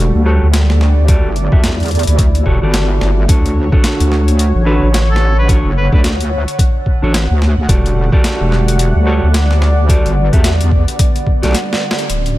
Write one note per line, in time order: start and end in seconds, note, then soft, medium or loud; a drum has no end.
0.00 0.12 E1 medium
0.00 7.65 D3 medium
0.00 3.25 G3 medium
0.00 3.25 A3 medium
0.00 0.23 F#4 medium
0.00 0.23 G4 medium
0.00 0.23 A4 medium
0.00 0.23 D5 loud
0.00 3.29 D5 medium
0.00 1.04 F#5 medium
0.15 0.40 D2 medium
0.26 0.47 F#4 medium
0.26 0.47 G4 medium
0.26 0.47 A4 medium
0.26 0.47 C#5 medium
0.42 1.22 D2 medium
0.54 snare loud
0.54 closed hi-hat medium
0.70 snare soft
0.81 snare medium
1.08 3.27 E4 medium
1.08 1.29 F#4 medium
1.08 1.29 G4 medium
1.08 1.29 A4 medium
1.08 1.29 D5 loud
1.08 kick loud
1.08 closed hi-hat medium
1.25 1.50 G1 medium
1.36 closed hi-hat soft
1.52 2.05 E2 medium
1.52 1.70 F#4 medium
1.52 1.70 G4 medium
1.52 1.70 A4 medium
1.52 1.70 E5 medium
1.52 kick loud
1.64 snare loud
1.64 closed hi-hat medium
1.80 closed hi-hat soft
1.83 closed hi-hat soft
1.86 closed hi-hat soft
1.88 closed hi-hat soft
1.91 closed hi-hat soft
1.95 closed hi-hat soft
1.99 closed hi-hat soft
2.03 closed hi-hat soft
2.07 2.44 D2 loud
2.07 closed hi-hat medium
2.18 kick loud
2.18 closed hi-hat medium
2.35 closed hi-hat soft
2.46 2.60 E1 medium
2.46 2.60 F#4 medium
2.46 2.60 G4 medium
2.46 2.60 A4 medium
2.46 2.60 C#5 medium
2.46 kick medium
2.62 2.99 G1 medium
2.62 3.26 F#4 medium
2.62 3.26 G4 medium
2.62 3.26 A4 medium
2.62 3.26 D5 medium
2.74 snare loud
2.74 closed hi-hat medium
3.01 3.27 G1 medium
3.01 snare medium
3.28 3.70 D2 loud
3.28 3.69 D4 medium
3.28 3.69 F#4 medium
3.28 3.69 A4 medium
3.28 7.65 C#5 medium
3.28 3.69 C#5 medium
3.28 12.06 F#5 medium
3.28 kick loud
3.28 closed hi-hat medium
3.46 closed hi-hat soft
3.65 7.69 C#5 medium
3.72 4.63 D4 medium
3.72 4.63 F#4 medium
3.72 4.63 A4 medium
3.72 4.63 C#5 loud
3.72 kick loud
3.84 snare loud
3.84 closed hi-hat medium
4.00 4.53 D2 loud
4.00 closed hi-hat soft
4.12 snare soft
4.28 closed hi-hat soft
4.39 closed hi-hat medium
4.55 4.80 A1 loud
4.66 4.87 D4 medium
4.66 4.87 F#4 medium
4.66 4.87 A4 medium
4.66 4.87 B4 medium
4.83 5.63 A1 medium
4.94 snare loud
4.94 closed hi-hat medium
5.11 5.35 A4 medium
5.16 snare soft
5.38 5.50 B4 medium
5.48 5.70 D4 medium
5.48 5.70 F#4 medium
5.48 5.70 A4 medium
5.48 5.70 C#5 loud
5.48 kick loud
5.48 closed hi-hat medium
5.65 5.90 F#1 medium
5.77 5.87 B4 medium
5.92 6.45 D2 medium
5.92 6.11 D4 medium
5.92 6.11 F#4 medium
5.92 6.11 A4 medium
5.92 6.00 B4 medium
5.92 6.11 D5 medium
5.92 kick loud
6.04 snare loud
6.04 closed hi-hat medium
6.21 closed hi-hat soft
6.48 closed hi-hat soft
6.59 kick loud
6.59 closed hi-hat medium
6.86 kick medium
7.02 7.28 A1 loud
7.02 7.13 D4 medium
7.02 7.13 F#4 medium
7.02 7.13 A4 medium
7.02 7.13 C#5 medium
7.14 snare loud
7.14 closed hi-hat medium
7.31 7.55 D2 medium
7.42 snare medium
7.58 7.67 D2 medium
7.68 8.10 E1 loud
7.68 12.05 D3 medium
7.68 12.05 G3 medium
7.68 9.87 A3 medium
7.68 8.09 F#4 medium
7.68 8.09 G4 medium
7.68 8.09 A4 medium
7.68 8.09 D5 medium
7.68 kick loud
7.68 closed hi-hat medium
7.86 closed hi-hat soft
7.97 12.10 D5 medium
8.12 9.04 F#4 medium
8.12 9.04 G4 medium
8.12 9.04 A4 medium
8.12 9.04 D5 loud
8.12 kick loud
8.24 snare loud
8.24 closed hi-hat medium
8.41 8.93 E1 medium
8.52 snare soft
8.68 closed hi-hat medium
8.79 closed hi-hat medium
8.95 9.20 D2 loud
9.06 9.28 F#4 medium
9.06 9.28 G4 medium
9.06 9.28 A4 medium
9.06 9.28 C#5 medium
9.23 10.03 D2 loud
9.34 snare loud
9.34 closed hi-hat medium
9.51 snare medium
9.62 snare medium
9.88 12.07 B3 medium
9.88 10.10 F#4 medium
9.88 10.10 G4 medium
9.88 10.10 A4 medium
9.88 10.10 D5 loud
9.88 kick loud
9.88 closed hi-hat medium
10.06 10.30 G1 medium
10.06 closed hi-hat soft
10.33 10.85 E2 medium
10.33 10.51 F#4 medium
10.33 10.51 G4 medium
10.33 10.51 A4 medium
10.33 10.51 E5 medium
10.33 kick loud
10.33 closed hi-hat soft
10.44 snare loud
10.44 closed hi-hat medium
10.61 closed hi-hat medium
10.72 kick medium
10.88 closed hi-hat medium
10.99 kick loud
10.99 closed hi-hat medium
11.16 closed hi-hat soft
11.27 kick medium
11.42 11.54 B1 loud
11.42 11.53 F#4 medium
11.42 11.53 G4 medium
11.42 11.53 A4 medium
11.42 11.53 D5 medium
11.42 snare soft
11.42 closed hi-hat soft
11.45 snare soft
11.51 snare soft
11.54 snare medium
11.54 snare soft
11.54 closed hi-hat medium
11.73 snare medium
11.91 snare loud
11.98 closed hi-hat soft
12.09 12.38 D1 medium
12.09 12.38 D3 medium
12.09 12.38 B3 medium
12.09 12.38 C#4 medium
12.09 12.38 F#4 medium
12.09 closed hi-hat medium
12.15 12.38 E4 medium
12.26 closed hi-hat soft